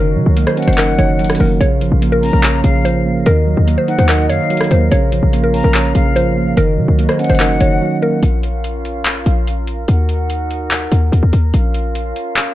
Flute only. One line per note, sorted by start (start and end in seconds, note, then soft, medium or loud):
0.57 1.57 F#5 loud
2.22 2.61 A#5 medium
2.64 3.22 F5 medium
3.88 4.27 F#5 medium
4.30 4.88 F5 medium
5.54 5.93 A#5 medium
5.95 6.54 F5 medium
7.19 8.19 F#5 loud